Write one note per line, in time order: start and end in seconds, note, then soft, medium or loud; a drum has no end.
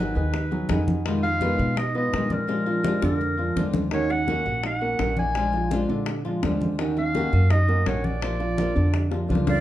0.00 0.11 G#1 medium
0.00 0.15 D#3 medium
0.00 0.15 F#3 medium
0.00 0.16 B3 medium
0.00 0.15 D#4 medium
0.00 0.14 G#4 medium
0.00 0.16 B4 medium
0.15 0.66 D#2 medium
0.15 0.45 D#3 medium
0.15 0.32 B3 soft
0.15 0.45 D#4 medium
0.15 0.33 D#4 soft
0.15 0.33 G#4 soft
0.15 0.84 B4 medium
0.15 high conga soft
0.33 muted nylon-string guitar stroke medium
0.33 high bongo medium
0.33 high conga soft
0.51 0.66 F#3 medium
0.51 0.69 B3 soft
0.51 0.69 D#4 soft
0.51 0.67 F#4 medium
0.51 0.69 G#4 soft
0.51 high bongo soft
0.51 high conga soft
0.69 1.54 F2 medium
0.69 1.04 D#3 medium
0.69 0.99 D#3 medium
0.69 1.05 B3 medium
0.69 0.99 D#4 medium
0.69 1.05 D#4 medium
0.69 1.05 G#4 medium
0.69 high bongo medium
0.69 low bongo medium
0.69 high conga medium
0.88 high bongo soft
0.88 high conga medium
1.05 1.23 B2 medium
1.05 1.35 D#3 medium
1.05 1.23 D#3 medium
1.05 1.23 G#3 medium
1.05 1.35 D#4 medium
1.05 1.22 D#4 medium
1.05 1.22 F4 medium
1.05 high bongo medium
1.05 high conga soft
1.23 1.40 G#3 soft
1.23 1.41 D#4 soft
1.23 1.40 F4 soft
1.23 1.80 F5 medium
1.23 high bongo soft
1.23 high conga soft
1.41 1.58 B2 medium
1.41 1.58 D#3 medium
1.41 1.59 G#3 medium
1.41 1.71 B3 medium
1.41 1.58 D#4 medium
1.41 1.57 F4 medium
1.41 1.71 B4 medium
1.41 high bongo medium
1.41 high conga medium
1.58 2.09 B2 medium
1.58 1.76 G#3 soft
1.58 1.76 D#4 soft
1.58 1.76 F4 soft
1.58 high bongo soft
1.58 high conga soft
1.76 1.92 D#4 medium
1.76 1.92 D#5 medium
1.76 1.96 D#5 medium
1.76 muted nylon-string guitar stroke medium
1.76 high bongo medium
1.76 high conga soft
1.95 2.13 G#3 soft
1.95 2.24 B3 medium
1.95 2.13 D#4 soft
1.95 2.12 F4 soft
1.95 2.25 B4 medium
1.95 2.34 D#5 medium
1.95 high conga soft
2.13 2.97 A#2 medium
2.13 2.47 D#3 medium
2.13 2.47 G#3 medium
2.13 2.48 D#4 medium
2.13 2.48 F4 medium
2.13 high bongo medium
2.13 low bongo medium
2.13 high conga soft
2.30 3.04 A#4 medium
2.30 2.60 D5 medium
2.30 high bongo soft
2.30 high conga medium
2.47 2.65 F3 medium
2.47 2.66 G#3 medium
2.47 2.65 D4 medium
2.47 2.65 F4 medium
2.47 high bongo medium
2.47 high conga soft
2.66 2.96 F3 medium
2.66 2.83 G#3 soft
2.66 2.84 D4 soft
2.66 2.84 F4 soft
2.66 2.96 F4 medium
2.66 high conga soft
2.83 3.01 F3 medium
2.83 3.02 G#3 medium
2.83 3.02 D4 medium
2.83 3.00 F4 medium
2.83 high bongo medium
2.83 high conga medium
3.02 3.53 F2 medium
3.02 3.32 D3 medium
3.02 3.20 G#3 soft
3.02 3.32 D4 medium
3.02 3.20 D4 soft
3.02 3.19 F4 soft
3.02 3.71 A#4 medium
3.02 high bongo medium
3.02 high conga soft
3.21 muted nylon-string guitar stroke medium
3.21 high conga soft
3.37 3.53 F3 medium
3.37 3.56 G#3 soft
3.37 3.56 D4 soft
3.37 3.55 F4 soft
3.37 3.53 F4 medium
3.37 high conga soft
3.56 4.40 D#2 medium
3.56 3.86 D3 medium
3.56 3.91 F3 soft
3.56 3.92 G#3 medium
3.56 3.86 D4 medium
3.56 3.92 D4 medium
3.56 3.93 F4 medium
3.56 low bongo medium
3.56 high conga medium
3.74 low bongo medium
3.74 high conga medium
3.91 4.09 D#3 medium
3.91 4.21 D#3 medium
3.91 4.10 A#3 medium
3.91 4.10 C#4 medium
3.91 4.21 D#4 medium
3.91 4.09 F#4 medium
3.91 4.13 C#5 medium
3.91 high bongo medium
3.91 high conga soft
4.10 4.27 A#3 soft
4.10 4.28 C#4 soft
4.10 4.27 F#4 soft
4.10 4.64 F#5 loud
4.10 high bongo soft
4.10 high conga soft
4.27 4.45 D#3 medium
4.27 4.57 A#3 medium
4.27 4.45 A#3 medium
4.27 4.46 C#4 medium
4.27 4.44 F#4 medium
4.27 4.57 A#4 medium
4.27 high bongo medium
4.27 high conga soft
4.46 4.96 A#1 medium
4.46 4.63 A#3 soft
4.46 4.63 C#4 soft
4.46 4.63 F#4 soft
4.46 high bongo soft
4.46 high conga soft
4.63 4.78 D#4 medium
4.63 4.78 D#5 medium
4.63 5.15 F#5 medium
4.63 muted nylon-string guitar stroke medium
4.63 high bongo medium
4.63 high conga soft
4.81 5.11 A#3 medium
4.81 4.99 A#3 soft
4.81 4.99 C#4 soft
4.81 4.99 F#4 soft
4.81 5.11 A#4 medium
4.81 high conga soft
4.99 5.84 A#1 medium
4.99 5.35 D#3 medium
4.99 5.35 A#3 medium
4.99 5.35 C#4 medium
4.99 5.35 F#4 medium
4.99 high bongo medium
4.99 low bongo medium
4.99 high conga soft
5.17 5.47 D5 medium
5.17 5.86 G#5 medium
5.17 high bongo soft
5.17 high conga medium
5.35 5.53 F3 medium
5.35 5.53 G#3 medium
5.35 5.53 D4 medium
5.35 5.53 F4 medium
5.35 high bongo medium
5.35 high conga soft
5.53 5.83 F3 medium
5.53 5.71 G#3 soft
5.53 5.72 D4 soft
5.53 5.71 F4 soft
5.53 5.83 F4 medium
5.53 high bongo soft
5.53 high conga soft
5.71 5.89 F3 medium
5.71 5.89 G#3 medium
5.71 5.89 D4 medium
5.71 5.88 F4 medium
5.71 high bongo medium
5.71 high conga medium
5.89 6.39 A#2 medium
5.89 6.18 D3 medium
5.89 6.07 G#3 soft
5.89 6.19 D4 medium
5.89 6.07 D4 soft
5.89 6.07 F4 soft
5.89 high conga soft
6.06 muted nylon-string guitar stroke medium
6.06 high bongo medium
6.06 high conga soft
6.24 6.39 F3 medium
6.24 6.43 G#3 soft
6.24 6.43 D4 soft
6.24 6.40 F4 medium
6.24 6.42 F4 soft
6.24 high bongo soft
6.24 high conga soft
6.42 7.27 D#2 medium
6.42 6.72 D3 medium
6.42 6.78 F3 medium
6.42 6.79 G#3 medium
6.42 6.72 D4 medium
6.42 6.79 D4 medium
6.42 6.79 F4 medium
6.42 high bongo medium
6.42 low bongo medium
6.42 high conga medium
6.61 high bongo soft
6.61 high conga medium
6.78 7.08 D#3 medium
6.78 6.96 D#3 medium
6.78 6.96 A#3 medium
6.78 6.97 C#4 medium
6.78 7.08 D#4 medium
6.78 6.96 F#4 medium
6.78 high bongo medium
6.78 high conga soft
6.97 7.14 A#3 soft
6.97 7.15 C#4 soft
6.97 7.14 F#4 soft
6.97 7.52 F5 loud
6.97 high bongo soft
6.97 high conga soft
7.14 7.32 D#3 medium
7.14 7.44 A#3 medium
7.14 7.32 A#3 medium
7.14 7.33 C#4 medium
7.14 7.31 F#4 medium
7.14 7.44 A#4 medium
7.14 high bongo medium
7.14 high conga medium
7.33 7.83 F#2 medium
7.33 7.49 A#3 soft
7.33 7.50 C#4 soft
7.33 7.50 F#4 medium
7.33 high bongo soft
7.33 high conga soft
7.50 7.65 D#4 medium
7.50 7.65 D#5 medium
7.50 7.89 D#5 medium
7.50 muted nylon-string guitar stroke medium
7.50 high bongo medium
7.50 high conga soft
7.68 7.97 A#3 medium
7.68 7.85 A#3 soft
7.68 7.86 C#4 soft
7.68 7.85 F#4 soft
7.68 7.98 A#4 medium
7.68 high conga soft
7.86 8.70 A#1 medium
7.86 8.21 D#3 medium
7.86 8.21 A#3 medium
7.86 8.22 C#4 medium
7.86 8.22 F#4 medium
7.86 8.06 C#5 medium
7.86 high bongo medium
7.86 low bongo medium
7.86 high conga soft
8.04 8.33 D5 medium
8.04 9.30 D5 medium
8.04 high bongo soft
8.04 high conga medium
8.21 8.39 F3 medium
8.21 8.39 A#3 medium
8.21 8.39 D4 medium
8.21 8.38 F4 medium
8.21 high bongo medium
8.21 high conga soft
8.39 8.69 F3 medium
8.39 8.57 A#3 soft
8.39 8.57 D4 soft
8.39 8.57 F4 medium
8.39 8.69 F4 medium
8.39 high bongo soft
8.39 high conga soft
8.57 8.75 F3 medium
8.57 8.75 A#3 medium
8.57 8.75 D4 medium
8.57 8.74 F4 medium
8.57 high bongo medium
8.57 high conga medium
8.75 9.26 F2 medium
8.75 9.05 D3 medium
8.75 8.93 A#3 soft
8.75 9.05 D4 medium
8.75 8.93 D4 soft
8.75 8.93 F4 medium
8.75 high conga soft
8.94 muted nylon-string guitar stroke medium
8.94 high bongo medium
8.94 high conga soft
9.10 9.26 F3 medium
9.10 9.29 A#3 soft
9.10 9.29 D4 soft
9.10 9.26 F4 medium
9.10 9.29 F4 soft
9.10 high bongo medium
9.10 high conga soft
9.29 9.60 C#2 medium
9.29 9.58 F3 medium
9.29 9.60 F3 medium
9.29 9.60 A#3 medium
9.29 9.58 D4 medium
9.29 9.60 D4 medium
9.29 9.60 F4 medium
9.29 high conga medium
9.35 low bongo medium
9.47 9.60 D5 medium
9.47 9.60 F5 medium
9.47 low bongo loud
9.47 high conga medium